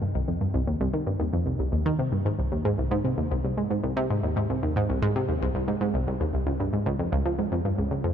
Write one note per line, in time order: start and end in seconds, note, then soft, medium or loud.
0.02 0.11 G2 medium
0.15 0.21 C2 medium
0.28 0.41 F2 medium
0.41 0.54 G2 medium
0.54 0.60 C2 medium
0.67 0.77 D#2 medium
0.80 0.86 C2 loud
0.93 1.03 D#3 medium
1.07 1.13 G2 medium
1.20 1.26 D#2 medium
1.33 1.46 F2 medium
1.46 1.56 C2 medium
1.59 1.69 C2 medium
1.72 1.82 D#2 medium
1.86 1.96 D#3 loud
1.99 2.12 C3 medium
2.12 2.22 G2 medium
2.25 2.31 G#2 medium
2.39 2.51 C2 medium
2.52 2.64 D#2 medium
2.65 2.71 G#2 loud
2.78 2.88 C2 medium
2.91 2.97 G#2 loud
3.04 3.14 C3 medium
3.18 3.23 D#2 medium
3.31 3.37 C2 medium
3.44 3.57 C2 medium
3.57 3.67 G#2 medium
3.70 3.80 G#2 medium
3.83 3.93 C2 medium
3.97 4.06 C3 loud
4.10 4.23 G#2 medium
4.23 4.33 D#2 medium
4.36 4.42 G#2 medium
4.50 4.62 C2 medium
4.63 4.75 D#2 medium
4.76 4.82 G#2 medium
4.89 4.99 C2 medium
5.02 5.08 G#2 loud
5.16 5.25 C3 medium
5.29 5.34 D#2 medium
5.42 5.47 C2 medium
5.55 5.67 C2 medium
5.68 5.73 G#2 medium
5.81 5.93 G#2 medium
5.94 6.06 C2 medium
6.07 6.17 C2 medium
6.20 6.26 D#2 medium
6.33 6.39 C2 medium
6.47 6.52 C#2 medium
6.60 6.72 G2 medium
6.73 6.85 G#2 medium
6.86 6.92 C#2 loud
6.99 7.09 F2 medium
7.12 7.18 C#2 loud
7.25 7.35 F3 medium
7.38 7.44 G#2 medium
7.52 7.58 F2 medium
7.65 7.77 G2 medium
7.78 7.88 C#2 medium
7.91 8.01 C#2 medium
8.04 8.14 F2 medium